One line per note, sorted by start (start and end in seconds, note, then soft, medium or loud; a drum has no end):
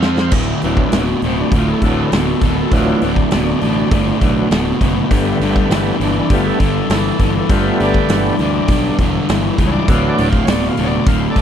0.00 0.30 F2 medium
0.00 0.33 F3 medium
0.00 0.33 C4 loud
0.00 0.34 C4 medium
0.00 0.33 F4 loud
0.00 0.34 F4 medium
0.00 0.34 C5 medium
0.00 0.34 F5 medium
0.00 snare loud
0.18 snare medium
0.31 0.52 D1 medium
0.31 0.60 D2 medium
0.31 0.61 A2 medium
0.31 kick loud
0.31 crash loud
0.62 0.83 D1 medium
0.62 0.90 D2 medium
0.62 0.91 A2 medium
0.62 1.04 E3 soft
0.62 open hi-hat medium
0.66 1.04 F#3 soft
0.66 1.05 D4 medium
0.77 kick medium
0.92 1.12 D1 medium
0.92 1.20 D2 medium
0.92 1.20 B2 medium
0.92 snare loud
0.92 open hi-hat medium
1.22 1.42 D1 medium
1.22 1.50 D2 medium
1.22 1.50 B2 medium
1.22 1.39 C4 medium
1.22 open hi-hat medium
1.40 1.53 D4 medium
1.51 1.72 D1 medium
1.51 1.80 D2 medium
1.51 1.80 A2 medium
1.51 kick loud
1.51 open hi-hat medium
1.58 1.70 F4 medium
1.68 1.71 G#4 medium
1.72 2.57 A4 medium
1.81 2.02 D1 medium
1.81 2.10 D2 medium
1.81 2.11 A2 medium
1.81 2.10 E3 soft
1.81 2.11 F#3 soft
1.81 2.10 D4 soft
1.81 kick medium
1.81 open hi-hat medium
2.12 2.32 D1 medium
2.12 2.40 D2 medium
2.12 2.40 B2 medium
2.12 snare loud
2.12 open hi-hat medium
2.41 2.62 D1 medium
2.41 2.70 D2 medium
2.41 2.70 B2 medium
2.41 kick medium
2.41 open hi-hat medium
2.61 2.73 A4 medium
2.72 2.92 D1 medium
2.72 2.99 D2 medium
2.72 3.00 A2 medium
2.72 3.12 E3 medium
2.72 3.13 F#3 soft
2.72 3.03 D4 medium
2.72 kick loud
2.72 open hi-hat medium
2.76 3.03 F4 medium
3.01 3.22 D1 medium
3.01 3.29 D2 medium
3.01 3.29 A2 medium
3.01 4.20 D4 medium
3.01 open hi-hat medium
3.16 kick medium
3.31 3.52 D1 medium
3.31 3.59 D2 medium
3.31 3.59 B2 medium
3.31 snare loud
3.31 open hi-hat medium
3.61 3.82 A1 medium
3.61 3.88 D2 medium
3.61 3.89 B2 medium
3.61 open hi-hat soft
3.91 4.11 G1 medium
3.91 4.18 D2 medium
3.91 4.18 A2 medium
3.91 kick loud
3.91 open hi-hat medium
4.19 4.41 B1 medium
4.19 4.48 D2 medium
4.19 4.48 A2 medium
4.19 4.48 E3 soft
4.19 4.48 F#3 soft
4.19 4.49 D4 soft
4.19 kick medium
4.19 open hi-hat medium
4.50 4.71 D1 medium
4.50 4.78 D2 medium
4.50 4.78 B2 medium
4.50 snare loud
4.50 open hi-hat medium
4.80 5.01 F#1 medium
4.80 5.08 D2 medium
4.80 5.08 B2 medium
4.80 kick medium
4.80 open hi-hat medium
4.97 snare soft
5.09 5.31 G1 medium
5.09 5.38 G2 medium
5.09 5.38 D3 medium
5.09 5.96 G3 medium
5.09 5.97 A3 medium
5.09 5.97 B3 medium
5.09 kick loud
5.09 open hi-hat medium
5.40 5.60 G1 medium
5.40 5.69 G2 medium
5.40 5.69 D3 medium
5.40 open hi-hat medium
5.56 kick medium
5.70 5.90 G1 medium
5.70 5.98 G2 medium
5.70 5.98 E3 medium
5.70 snare loud
5.70 open hi-hat medium
5.99 6.20 G1 medium
5.99 6.27 G2 medium
5.99 6.27 E3 medium
5.99 open hi-hat medium
6.03 6.16 D4 medium
6.19 6.32 D4 medium
6.30 6.50 G1 medium
6.30 6.57 G2 medium
6.30 6.57 D3 loud
6.30 6.58 G3 soft
6.30 6.59 A3 soft
6.30 6.59 B3 medium
6.30 kick loud
6.30 open hi-hat medium
6.35 6.47 F4 loud
6.45 6.48 G#4 medium
6.49 7.34 A4 medium
6.60 6.80 G1 medium
6.60 6.87 G2 medium
6.60 6.87 D3 medium
6.60 kick medium
6.60 open hi-hat medium
6.89 7.09 G1 medium
6.89 7.17 G2 medium
6.89 7.17 E3 medium
6.89 snare loud
6.89 open hi-hat medium
7.19 7.39 G1 medium
7.19 7.47 G2 medium
7.19 7.47 E3 medium
7.19 kick medium
7.19 open hi-hat medium
7.39 7.51 A4 medium
7.49 7.70 G1 medium
7.49 7.77 G2 medium
7.49 7.77 D3 medium
7.49 8.35 G3 medium
7.49 8.36 A3 soft
7.49 8.36 B3 medium
7.49 7.80 F4 medium
7.49 kick loud
7.49 open hi-hat medium
7.80 8.00 G1 medium
7.80 8.07 G2 medium
7.80 8.07 D3 medium
7.80 8.98 D4 medium
7.80 open hi-hat medium
7.94 kick medium
8.09 8.30 G1 medium
8.09 8.37 G2 medium
8.09 8.38 E3 medium
8.09 snare loud
8.09 open hi-hat medium
8.39 8.59 D2 medium
8.39 8.67 G2 medium
8.39 8.67 E3 medium
8.39 open hi-hat soft
8.68 8.88 B1 medium
8.68 8.97 G2 medium
8.68 8.97 D3 loud
8.68 kick loud
8.68 open hi-hat medium
8.98 9.18 E1 medium
8.98 9.26 G2 medium
8.98 9.27 D3 medium
8.98 kick medium
8.98 open hi-hat medium
9.28 9.49 G1 medium
9.28 9.56 G2 medium
9.28 9.56 E3 medium
9.28 snare loud
9.28 open hi-hat medium
9.58 9.78 C#2 medium
9.58 9.86 G2 medium
9.58 9.86 E3 medium
9.58 kick medium
9.58 open hi-hat medium
9.67 9.70 C#5 medium
9.72 9.90 D5 loud
9.88 10.08 D1 medium
9.88 10.15 D2 medium
9.88 10.15 A2 medium
9.88 10.29 E3 medium
9.88 10.29 F#3 soft
9.88 10.30 D4 medium
9.88 10.10 F5 medium
9.88 kick loud
9.88 open hi-hat medium
10.09 10.28 D5 medium
10.18 10.38 D1 medium
10.18 10.45 D2 medium
10.18 10.45 A2 medium
10.18 open hi-hat medium
10.30 10.49 F5 medium
10.30 kick medium
10.45 10.68 D1 medium
10.45 10.75 D2 medium
10.45 10.75 B2 medium
10.45 10.49 C#5 medium
10.45 snare loud
10.45 open hi-hat medium
10.50 10.68 D5 loud
10.69 10.88 F5 loud
10.77 10.98 D1 medium
10.77 11.04 D2 medium
10.77 11.05 B2 medium
10.77 open hi-hat medium
10.84 10.87 C#5 medium
10.84 11.07 D5 loud
11.06 11.26 D1 medium
11.06 11.35 D2 medium
11.06 11.35 A2 loud
11.06 11.27 F5 medium
11.06 kick loud
11.06 open hi-hat medium
11.30 11.41 A4 medium
11.30 11.41 D5 medium
11.36 11.41 D1 medium
11.36 11.41 D2 medium
11.36 11.41 A2 medium
11.36 kick medium
11.36 open hi-hat medium